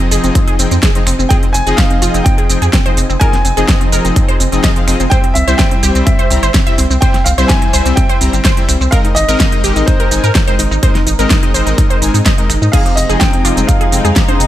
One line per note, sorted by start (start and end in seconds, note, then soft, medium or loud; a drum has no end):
0.11 0.19 F1 medium
0.11 0.56 F3 medium
0.11 0.56 C4 medium
0.11 0.56 D#4 medium
0.11 0.56 G#4 medium
0.11 0.19 G#4 loud
0.11 0.56 D#5 medium
0.11 open hi-hat loud
0.11 shaker medium
0.24 0.31 F1 medium
0.24 0.31 C4 medium
0.24 closed hi-hat soft
0.24 shaker soft
0.35 0.43 C4 medium
0.35 kick loud
0.35 closed hi-hat medium
0.35 shaker soft
0.48 0.55 G#4 medium
0.48 closed hi-hat soft
0.59 0.66 F1 medium
0.59 0.67 F3 medium
0.59 0.67 C4 medium
0.59 0.67 D#4 medium
0.59 0.67 G#4 medium
0.59 0.67 G5 medium
0.59 open hi-hat loud
0.59 shaker medium
0.71 0.78 F2 medium
0.71 0.79 C4 medium
0.71 closed hi-hat soft
0.71 shaker soft
0.83 0.91 G#4 medium
0.83 kick loud
0.83 snare loud
0.83 closed hi-hat medium
0.83 shaker soft
0.95 1.03 F3 medium
0.95 1.03 C4 medium
0.95 1.03 D#4 medium
0.95 1.03 G#4 medium
0.95 1.03 D#5 medium
0.95 closed hi-hat soft
1.07 1.14 F1 medium
1.07 1.15 C4 medium
1.07 finger snap medium
1.07 open hi-hat loud
1.07 shaker medium
1.19 1.26 F1 medium
1.19 1.26 C4 medium
1.19 shaker soft
1.29 1.43 F3 medium
1.29 1.43 C4 medium
1.29 1.43 D#4 medium
1.29 1.43 G#4 medium
1.29 1.39 G#4 loud
1.29 1.43 D#5 medium
1.29 1.34 G5 loud
1.29 kick loud
1.29 closed hi-hat medium
1.29 shaker soft
1.43 1.50 C4 medium
1.43 closed hi-hat soft
1.53 1.62 F1 loud
1.53 1.62 C4 medium
1.53 1.78 G#5 loud
1.53 open hi-hat loud
1.53 shaker medium
1.66 1.74 F1 medium
1.66 1.99 F3 medium
1.66 1.99 C4 medium
1.66 1.99 D#4 medium
1.66 1.99 G#4 medium
1.66 1.74 G#4 loud
1.66 1.99 D#5 loud
1.66 closed hi-hat soft
1.66 shaker soft
1.76 1.86 C4 medium
1.76 2.21 F5 loud
1.76 kick loud
1.76 snare loud
1.76 closed hi-hat medium
1.76 shaker soft
1.90 1.98 C4 medium
1.90 closed hi-hat soft
2.02 2.09 F1 loud
2.02 2.47 F3 medium
2.02 2.47 C4 medium
2.02 2.47 D#4 medium
2.02 2.10 F4 medium
2.02 2.47 G#4 medium
2.02 2.47 D#5 medium
2.02 open hi-hat loud
2.02 shaker medium
2.14 2.21 F1 medium
2.14 2.22 C4 medium
2.14 closed hi-hat soft
2.14 shaker soft
2.24 2.34 C4 medium
2.24 2.92 G5 medium
2.24 kick loud
2.24 closed hi-hat medium
2.24 shaker soft
2.38 2.45 G#4 medium
2.38 closed hi-hat soft
2.49 2.57 F1 medium
2.49 2.58 F3 medium
2.49 2.58 C4 medium
2.49 2.58 D#4 medium
2.49 2.58 G#4 medium
2.49 2.58 G5 medium
2.49 open hi-hat loud
2.49 shaker medium
2.62 2.69 F2 medium
2.62 2.69 G#4 medium
2.62 closed hi-hat soft
2.62 shaker soft
2.73 2.81 C4 medium
2.73 kick loud
2.73 snare loud
2.73 closed hi-hat medium
2.73 shaker soft
2.86 2.93 F3 medium
2.86 2.93 C4 medium
2.86 2.93 D#4 medium
2.86 2.93 G#4 medium
2.86 2.93 C5 medium
2.86 2.93 D#5 medium
2.86 closed hi-hat soft
2.97 3.05 F1 loud
2.97 3.05 C4 medium
2.97 open hi-hat loud
2.97 shaker medium
3.10 3.16 F1 medium
3.10 3.17 C4 medium
3.10 shaker soft
3.20 3.34 F3 medium
3.20 3.34 C4 medium
3.20 3.34 D#4 medium
3.20 3.34 G#4 medium
3.20 3.29 A#4 medium
3.20 3.34 D#5 medium
3.20 3.88 G#5 loud
3.20 kick loud
3.20 closed hi-hat medium
3.20 shaker soft
3.33 3.41 C4 medium
3.33 snare soft
3.33 closed hi-hat soft
3.45 3.52 F1 medium
3.45 3.53 C4 medium
3.45 open hi-hat loud
3.45 shaker medium
3.57 3.64 F1 medium
3.57 3.90 F3 loud
3.57 3.90 C4 medium
3.57 3.90 D#4 medium
3.57 3.65 G#4 loud
3.57 3.90 G#4 medium
3.57 3.90 D#5 loud
3.57 closed hi-hat soft
3.57 shaker soft
3.69 3.77 C4 medium
3.69 kick loud
3.69 snare loud
3.69 closed hi-hat medium
3.69 shaker soft
3.81 3.88 C4 medium
3.81 closed hi-hat soft
3.92 4.00 F1 medium
3.92 4.37 F3 medium
3.92 4.37 C4 medium
3.92 4.37 D#4 medium
3.92 4.37 G#4 medium
3.92 4.00 A#4 loud
3.92 4.37 D#5 medium
3.92 open hi-hat loud
3.92 shaker medium
4.05 4.12 F1 medium
4.05 4.12 C4 medium
4.05 closed hi-hat soft
4.05 shaker soft
4.16 4.24 C4 medium
4.16 kick loud
4.16 closed hi-hat medium
4.16 shaker soft
4.28 4.36 C5 medium
4.28 closed hi-hat soft
4.40 4.47 F1 loud
4.40 4.48 C4 medium
4.40 open hi-hat loud
4.40 shaker medium
4.52 4.59 F1 medium
4.52 4.73 F3 medium
4.52 4.60 C4 medium
4.52 4.73 C4 medium
4.52 4.73 D#4 medium
4.52 4.73 G#4 medium
4.52 4.73 D#5 medium
4.52 closed hi-hat soft
4.52 shaker soft
4.64 4.72 D#5 loud
4.64 kick loud
4.64 snare loud
4.64 closed hi-hat medium
4.64 shaker soft
4.76 4.84 F3 loud
4.76 4.84 C4 medium
4.76 4.84 D#4 medium
4.76 4.84 G#4 medium
4.76 4.84 F5 loud
4.76 closed hi-hat soft
4.88 4.95 F1 medium
4.88 4.96 F3 loud
4.88 4.96 C4 medium
4.88 4.96 D#4 medium
4.88 4.96 G#4 medium
4.88 4.96 D#5 loud
4.88 finger snap medium
4.88 open hi-hat loud
4.88 shaker medium
5.00 5.07 F1 medium
5.00 5.07 C4 medium
5.00 closed hi-hat soft
5.00 shaker soft
5.10 5.24 G3 medium
5.10 5.24 C4 medium
5.10 5.24 E4 medium
5.10 5.19 C5 loud
5.10 5.24 C5 medium
5.10 5.24 E5 medium
5.10 5.33 G5 loud
5.10 kick loud
5.10 closed hi-hat medium
5.10 shaker soft
5.24 5.31 C4 medium
5.24 closed hi-hat soft
5.34 5.43 C2 medium
5.34 5.43 C4 medium
5.34 5.59 E5 medium
5.34 open hi-hat loud
5.34 shaker medium
5.48 5.55 C2 medium
5.48 5.80 G3 medium
5.48 5.80 C4 medium
5.48 5.80 E4 medium
5.48 5.80 C5 medium
5.48 5.55 C5 medium
5.48 5.80 E5 loud
5.48 closed hi-hat soft
5.48 shaker soft
5.57 5.67 C4 medium
5.57 6.07 G5 loud
5.57 kick loud
5.57 snare loud
5.57 closed hi-hat medium
5.57 shaker soft
5.71 5.79 C4 medium
5.71 closed hi-hat soft
5.83 5.90 C2 medium
5.83 6.28 G3 medium
5.83 6.28 C4 medium
5.83 6.28 E4 medium
5.83 5.91 G4 medium
5.83 6.28 C5 medium
5.83 6.28 E5 medium
5.83 open hi-hat loud
5.83 shaker medium
5.95 6.02 C2 medium
5.95 6.03 C4 medium
5.95 closed hi-hat soft
5.95 shaker soft
6.05 6.15 C4 medium
6.05 6.73 E5 medium
6.05 kick loud
6.05 closed hi-hat medium
6.05 shaker soft
6.19 6.26 C5 medium
6.19 closed hi-hat soft
6.30 6.38 C2 medium
6.30 6.39 G3 medium
6.30 6.39 C4 medium
6.30 6.38 C4 medium
6.30 6.39 E4 medium
6.30 6.39 C5 medium
6.30 6.39 A#5 medium
6.30 open hi-hat loud
6.30 shaker medium
6.43 6.50 G1 medium
6.43 6.50 C5 medium
6.43 closed hi-hat soft
6.43 shaker soft
6.54 6.62 C4 medium
6.54 kick loud
6.54 snare loud
6.54 closed hi-hat medium
6.54 shaker soft
6.67 6.74 G3 medium
6.67 6.74 C4 medium
6.67 6.74 E4 medium
6.67 6.74 C5 medium
6.67 6.74 E5 medium
6.67 closed hi-hat soft
6.78 6.86 C2 medium
6.78 6.86 C4 medium
6.78 open hi-hat loud
6.78 shaker medium
6.90 6.97 C2 medium
6.90 6.98 C4 medium
6.90 shaker soft
7.01 7.15 G3 medium
7.01 7.15 C4 medium
7.01 7.15 E4 medium
7.01 7.10 C5 medium
7.01 7.15 C5 medium
7.01 7.15 E5 medium
7.01 7.23 G5 loud
7.01 kick loud
7.01 closed hi-hat medium
7.01 shaker soft
7.14 7.22 C4 medium
7.14 snare soft
7.14 closed hi-hat soft
7.24 7.33 C2 medium
7.24 7.34 C4 medium
7.24 7.30 F5 loud
7.24 open hi-hat loud
7.24 shaker medium
7.38 7.45 C2 medium
7.38 7.71 G3 medium
7.38 7.71 C4 medium
7.38 7.71 E4 medium
7.38 7.45 C5 loud
7.38 7.71 C5 medium
7.38 7.71 E5 loud
7.38 closed hi-hat soft
7.38 shaker soft
7.48 7.57 C4 medium
7.48 7.98 G#5 loud
7.48 kick loud
7.48 snare loud
7.48 closed hi-hat medium
7.48 shaker soft
7.62 7.69 C4 medium
7.62 closed hi-hat soft
7.73 7.81 C2 medium
7.73 8.18 G3 medium
7.73 8.18 C4 medium
7.73 8.18 E4 medium
7.73 8.18 C5 medium
7.73 7.81 C5 medium
7.73 8.18 E5 medium
7.73 open hi-hat loud
7.73 shaker medium
7.86 7.93 C2 medium
7.86 7.93 C4 medium
7.86 closed hi-hat soft
7.86 shaker soft
7.96 8.05 C4 medium
7.96 8.64 G5 medium
7.96 kick loud
7.96 closed hi-hat medium
7.96 shaker soft
8.09 8.17 C5 medium
8.09 closed hi-hat soft
8.21 8.28 C2 loud
8.21 8.29 G3 medium
8.21 8.29 C4 medium
8.21 8.29 E4 medium
8.21 8.29 C5 medium
8.21 8.29 A#5 medium
8.21 open hi-hat loud
8.21 shaker medium
8.33 8.40 G1 medium
8.33 8.41 C4 medium
8.33 closed hi-hat soft
8.33 shaker soft
8.45 8.53 C5 loud
8.45 kick loud
8.45 snare loud
8.45 closed hi-hat medium
8.45 shaker soft
8.57 8.65 G3 medium
8.57 8.65 C4 medium
8.57 8.65 E4 medium
8.57 8.65 C5 medium
8.57 8.65 E5 medium
8.57 closed hi-hat soft
8.68 8.76 C2 loud
8.68 8.77 C4 medium
8.68 finger snap medium
8.68 open hi-hat loud
8.68 shaker medium
8.81 8.88 C2 medium
8.81 8.88 C4 medium
8.81 shaker soft
8.91 9.05 G#3 medium
8.91 9.05 C4 medium
8.91 9.05 D#4 medium
8.91 9.05 A#4 medium
8.91 9.00 A#4 loud
8.91 9.05 D#5 medium
8.91 8.96 F5 loud
8.91 kick loud
8.91 closed hi-hat medium
8.91 shaker soft
9.05 9.12 D#4 medium
9.05 closed hi-hat soft
9.15 9.24 G#1 loud
9.15 9.24 D#4 medium
9.15 9.89 D#5 loud
9.15 open hi-hat loud
9.15 shaker medium
9.28 9.35 G#1 medium
9.28 9.61 G#3 loud
9.28 9.61 C4 medium
9.28 9.61 D#4 medium
9.28 9.61 A#4 medium
9.28 9.36 A#4 loud
9.28 9.61 D#5 loud
9.28 closed hi-hat soft
9.28 shaker soft
9.40 9.48 D#4 medium
9.40 kick loud
9.40 snare loud
9.40 closed hi-hat loud
9.40 shaker soft
9.52 9.60 D#4 medium
9.52 closed hi-hat soft
9.64 9.71 G#1 medium
9.64 10.09 G#3 medium
9.64 10.09 C4 medium
9.64 10.09 D#4 medium
9.64 9.72 G4 loud
9.64 10.09 A#4 medium
9.64 10.09 D#5 medium
9.64 open hi-hat loud
9.64 shaker medium
9.76 9.83 G#1 medium
9.76 9.84 D#4 medium
9.76 closed hi-hat soft
9.76 shaker soft
9.86 9.96 D#4 medium
9.86 12.21 C5 medium
9.86 kick loud
9.86 closed hi-hat medium
9.86 shaker soft
10.00 10.07 A#4 medium
10.00 closed hi-hat soft
10.11 10.19 G#1 loud
10.11 10.20 G#3 medium
10.11 10.20 C4 medium
10.11 10.20 D#4 medium
10.11 10.19 D#4 medium
10.11 10.20 A#4 medium
10.11 10.20 G#5 medium
10.11 open hi-hat loud
10.11 shaker medium
10.24 10.31 G#2 medium
10.24 10.31 A#4 medium
10.24 closed hi-hat soft
10.24 shaker soft
10.35 10.43 D#4 medium
10.35 kick loud
10.35 snare loud
10.35 closed hi-hat medium
10.35 shaker soft
10.48 10.55 G#3 medium
10.48 10.55 C4 medium
10.48 10.55 D#4 medium
10.48 10.55 A#4 medium
10.48 10.55 C5 loud
10.48 10.55 D#5 medium
10.48 closed hi-hat soft
10.59 10.66 G#1 loud
10.59 10.67 D#4 medium
10.59 open hi-hat loud
10.59 shaker medium
10.71 10.78 G#1 medium
10.71 10.79 D#4 medium
10.71 shaker soft
10.83 10.96 G#3 medium
10.83 10.96 C4 medium
10.83 10.96 D#4 medium
10.83 10.96 A#4 medium
10.83 10.91 C5 medium
10.83 10.96 D#5 medium
10.83 kick loud
10.83 closed hi-hat medium
10.83 shaker soft
10.95 11.03 D#4 medium
10.95 snare soft
10.95 closed hi-hat soft
11.06 11.14 G#1 medium
11.06 11.15 D#4 medium
11.06 open hi-hat loud
11.06 shaker medium
11.19 11.26 G#1 medium
11.19 11.52 G#3 loud
11.19 11.52 C4 medium
11.19 11.52 D#4 medium
11.19 11.26 A#4 medium
11.19 11.52 A#4 medium
11.19 11.52 D#5 loud
11.19 closed hi-hat soft
11.19 shaker soft
11.30 11.38 D#4 medium
11.30 kick loud
11.30 snare loud
11.30 closed hi-hat loud
11.30 shaker soft
11.43 11.50 D#4 medium
11.43 closed hi-hat soft
11.54 11.62 G#1 medium
11.54 11.99 G#3 medium
11.54 11.99 C4 medium
11.54 11.99 D#4 medium
11.54 11.99 A#4 medium
11.54 11.62 C5 loud
11.54 11.99 D#5 medium
11.54 open hi-hat loud
11.54 shaker medium
11.67 11.74 G#1 medium
11.67 11.74 D#4 medium
11.67 closed hi-hat soft
11.67 shaker soft
11.78 11.86 D#4 medium
11.78 kick loud
11.78 closed hi-hat loud
11.78 shaker soft
11.90 11.98 C5 medium
11.90 closed hi-hat soft
12.02 12.09 G#1 loud
12.02 12.10 G#3 medium
12.02 12.10 C4 medium
12.02 12.10 D#4 medium
12.02 12.10 A#4 medium
12.02 12.10 G#5 medium
12.02 open hi-hat loud
12.02 shaker medium
12.14 12.21 G#2 medium
12.14 12.22 D#4 medium
12.14 open hi-hat medium
12.14 shaker soft
12.26 12.34 D#5 medium
12.26 kick loud
12.26 snare loud
12.26 closed hi-hat medium
12.26 shaker soft
12.38 12.46 G#3 medium
12.38 12.46 C4 medium
12.38 12.45 D#4 medium
12.38 12.46 D#4 medium
12.38 12.46 A#4 medium
12.38 12.46 D#5 medium
12.38 closed hi-hat soft
12.49 12.57 G#1 medium
12.49 12.57 D#4 medium
12.49 finger snap medium
12.49 open hi-hat loud
12.49 shaker medium
12.62 12.69 G#2 medium
12.62 12.69 D#4 medium
12.62 shaker soft
12.72 14.47 C3 medium
12.72 12.86 F3 medium
12.72 14.47 F3 medium
12.72 14.47 G#3 medium
12.72 12.86 C4 medium
12.72 12.86 D#4 medium
12.72 14.47 D#4 medium
12.72 12.86 G#4 medium
12.72 12.81 G#4 loud
12.72 12.86 D#5 medium
12.72 12.97 F5 loud
12.72 kick loud
12.72 closed hi-hat loud
12.72 crash medium
12.72 shaker soft
12.86 12.93 C4 medium
12.86 closed hi-hat soft
12.86 high woodblock soft
12.96 13.05 F1 medium
12.96 13.05 C4 medium
12.96 13.18 D#5 medium
12.96 open hi-hat loud
12.96 shaker medium
13.09 13.16 F1 medium
13.09 13.42 F3 medium
13.09 13.42 C4 medium
13.09 13.42 D#4 medium
13.09 13.42 G#4 medium
13.09 13.17 G#4 loud
13.09 13.42 D#5 loud
13.09 closed hi-hat soft
13.09 shaker soft
13.19 13.29 C4 medium
13.19 13.64 G5 loud
13.19 kick loud
13.19 snare loud
13.19 closed hi-hat loud
13.19 high conga medium
13.19 shaker soft
13.33 13.41 C4 medium
13.33 closed hi-hat soft
13.45 13.52 F1 medium
13.45 13.90 F3 medium
13.45 13.90 C4 medium
13.45 13.90 D#4 medium
13.45 13.53 F4 loud
13.45 13.90 G#4 medium
13.45 13.90 D#5 medium
13.45 open hi-hat loud
13.45 high woodblock medium
13.45 shaker medium
13.57 13.64 F1 medium
13.57 13.65 C4 medium
13.57 closed hi-hat soft
13.57 low conga medium
13.57 shaker soft
13.67 13.76 C4 medium
13.67 14.35 F5 medium
13.67 kick loud
13.67 closed hi-hat loud
13.67 shaker soft
13.81 13.88 G#4 medium
13.81 closed hi-hat soft
13.92 14.00 F1 medium
13.92 14.00 F3 medium
13.92 14.00 C4 medium
13.92 14.01 C4 medium
13.92 14.00 D#4 medium
13.92 14.01 G#4 medium
13.92 14.00 G5 medium
13.92 open hi-hat loud
13.92 shaker medium
14.05 14.12 F2 medium
14.05 14.12 G#4 medium
14.05 closed hi-hat soft
14.05 low conga medium
14.05 shaker soft
14.16 14.24 C4 medium
14.16 kick loud
14.16 snare loud
14.16 closed hi-hat loud
14.16 high woodblock soft
14.16 shaker soft
14.28 14.36 F3 medium
14.28 14.36 C4 medium
14.28 14.36 D#4 medium
14.28 14.36 G#4 medium
14.28 14.36 C5 medium
14.28 14.36 D#5 medium
14.28 closed hi-hat soft
14.28 high conga loud
14.40 14.47 F1 medium
14.40 14.47 C4 medium
14.40 open hi-hat loud
14.40 shaker medium